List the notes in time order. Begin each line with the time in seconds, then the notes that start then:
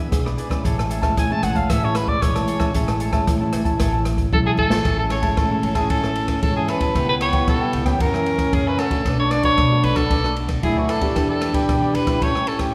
0.11 B1 B2 B3 D4 G#4, kick, cross-stick, closed hi-hat
0.25 G#4 B4 D5, cross-stick
0.37 E4 G#4 B4 D5, closed hi-hat
0.49 G#3 C#4 E4 G#4 B4 D5, kick, cross-stick, closed hi-hat
0.64 A1 A2 G#4 C#5 E5 A5, kick, closed hi-hat
0.78 C#5 E5 A5, cross-stick, closed hi-hat
0.90 G#4 C#5 E5 A5, closed hi-hat
1.02 G#3 C#4 E4 C#5 E5 A5, kick, cross-stick, closed hi-hat
1.17 A2 E3 G#5, kick, cross-stick, closed hi-hat
1.30 G#3 C#4 E4 C#5 E5 A5
1.42 A1 G#4 C#5 E5 F#5 A5, cross-stick, closed hi-hat
1.55 C#5 E5 F5 A5, kick, closed hi-hat
1.69 A1 A2 G#4 C#5 E5 A5, kick, cross-stick, closed hi-hat
1.83 G#3 C#4 E4 C#5 E5 A5
1.95 B4, muted cavaquinho stroke, cross-stick, closed hi-hat
2.07 D5, muted cavaquinho stroke, kick
2.21 A1 E3 G#3 C#4 E4 C#5, kick, cross-stick, closed hi-hat
2.35 C#5 E5 A5, cross-stick, closed hi-hat
2.47 G#4 C#5 E5 A5, closed hi-hat
2.60 G#3 C#4 E4 C#5 E5 A5, kick, cross-stick, closed hi-hat
2.74 A1 A2 G#3 C#4 E4 G#4 C#5 E5 A5, kick, closed hi-hat
2.88 C#5 E5 A5, cross-stick, closed hi-hat
3.00 G#4 C#5 E5 A5, closed hi-hat
3.12 G#3 C#4 E4 C#5 E5 A5, kick, cross-stick, closed hi-hat
3.27 A2 E3, kick, cross-stick, closed hi-hat
3.40 G#3 C#4 E4 C#5 E5 A5
3.52 A1 G#4 C#5 E5 A5, cross-stick, closed hi-hat
3.65 G#3 C#4 E4 C#5 E5 A5, kick, closed hi-hat
3.79 A1 A2 G#4 C#5 E5 A5, kick, cross-stick, closed hi-hat
3.93 G#3 C#4 E4 C#5 E5 A5
4.05 muted cavaquinho stroke, cross-stick, closed hi-hat
4.18 muted cavaquinho stroke, kick, closed hi-hat
4.32 B1 E3 G#3 C#4 E4 A4, kick, high tom
4.45 G#4 C#5 E5 A5
4.57 A1 G#4 A4 C#5 E5 A5, kick
4.70 G#3 C#4 E4 C#5 E5 A5, snare
4.84 A1 A2 C#4 G#4 C#5 E5 A5, kick, cross-stick, ride
4.98 A4 C#5 E5 A5
5.10 G#4 C#5 E5 A5, cross-stick, ride
5.22 G#3 C#4 E4 C#5 E5 A5, kick, ride
5.37 A2 E3 A4, kick, cross-stick, ride
5.51 G#3 C#4 E4 C#5 E5 A5
5.63 A1 G#4 C#5 E5 A5, ride
5.75 G#3 C#4 E4 G#4 C#5 E5 A5, kick, cross-stick, ride
5.90 A1 A2 G#4 A4 C#5 E5 A5, kick, ride
6.04 C#4 E4 C#5 E5 A5, cross-stick
6.15 muted cavaquinho stroke, ride
6.28 muted cavaquinho stroke, kick, cross-stick, ride
6.42 G#2 E3 G#3 C#4 E4 A4, kick, ride
6.56 G#4 C#5 E5 A5
6.68 G#4 B4 C#5 E5 A5, cross-stick, ride
6.80 G3 B3 E4 C#5 E5 A5, kick, ride
6.95 C#2 C#3 B3 E4 B4 C#5 G5, kick, cross-stick, ride
7.08 B4 C#5 G5
7.21 E4 B4 C#5 G5, cross-stick, ride
7.33 G3 B3 E4 B4 C#5 G5, kick, ride
7.48 C#3 A4, kick, cross-stick, ride
7.61 G3 B3 E4 B4 C#5 G5
7.73 C#2 E4 B4 C#5 G5, ride
7.86 E3 A#3 C#4 G4 B4 C#5 G5, kick, cross-stick, ride
8.00 F#2 C#4 F#4 A#4 C#5 E5, kick, ride
8.14 E3 A#3 C#4 A#4 C#5 E5, cross-stick
8.26 muted cavaquinho stroke, ride
8.38 muted cavaquinho stroke, kick, cross-stick, ride
8.53 F#2 C#3 E3 A#3 C#4 G#4, kick, ride
8.66 A#4 B4 C#5 E5
8.78 F#4 A4 A#4 C#5 E5, cross-stick, ride
8.91 A3 D4 F#4 A#4 C#5 E5, kick, ride
9.05 B1 B2 D4 A4 B4 D5, kick, cross-stick, ride
9.19 A4 B4 C#5 D5
9.31 D4 A4 B4 D5, cross-stick, ride
9.43 A3 D4 F#4 A4 B4 C#5 D5, kick, ride
9.58 F#2 B2, kick, cross-stick, ride
9.71 A3 D4 F#4 A4 B4 D5
9.83 B1 D4 A4 B4 D5, ride
9.95 A3 D4 F#4 A4 B4 D5, kick, cross-stick, ride
10.10 B1 B2 D4 A4 B4 D5, kick, ride
10.24 A3 D4 F#4 A4 B4 D5, cross-stick
10.36 muted cavaquinho stroke, ride
10.48 muted cavaquinho stroke, kick, cross-stick, ride
10.63 D2 F#2 A3 D4 E4 F#4 G#4, kick, ride
10.76 F#4 A4 B4 D5
10.88 D4 A4 B4 D5, cross-stick, ride
11.01 B3 D4 G4 A4 B4 D5, kick, ride
11.15 E2 E3 D4 E4 G4 B4 D5, kick, cross-stick, ride
11.29 G4 A4 B4 D5
11.41 E4 G4 B4 D5, cross-stick, ride
11.53 B3 D4 G4 B4 D5, kick, ride
11.69 B2 E3, kick, cross-stick, ride
11.82 B3 D4 G4 B4 D5
11.93 E2 E4 G4 B4 D5, ride
12.06 G3 C#4 E4 G4 B4 D5, kick, cross-stick, ride
12.21 A1 A2 C#4 G4 A4 C#5 G5, kick, ride
12.35 G3 C#4 E4 G5, cross-stick
12.47 A4, muted cavaquinho stroke, ride
12.59 G4, muted cavaquinho stroke, kick, cross-stick, ride